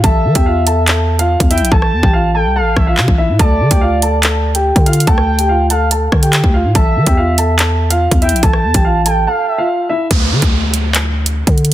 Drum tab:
HH |x--------x--------x-----x--------x-----x--x-x-x-|------------------------------------------------|x--------x--------x-----x--------x-----x--x-x-x-|x--------x--------x-----x--------x--x-----------|
CP |------------------------x-----------------------|------------------------------------x-----------|------------------------x-----------------------|------------------------------------x-----------|
SD |------------------------------------------------|---r--------------------------r-----------------|------------------------------------------------|---r--------------------------r-----------------|
BD |o--------o-----------------------------o--------|o--------o--------------------o--------o--------|o--------o-----------------------------o--------|o-----------------------------o--------o--------|

HH |x--------x--------x-----x--------x-----x--x-x-x-|x--------x--------x-----------------------------|x--------x--------x-----x--------x-----x--x-x---|
CP |------------------------x-----------------------|------------------------------------------------|------------------------x-----------------------|
SD |------------------------------------------------|---r--------------------------------------------|------------------------------------------------|
BD |o--------o-----------------------------o--------|o--------o--------------------------------------|o--------o-----------------------------o--------|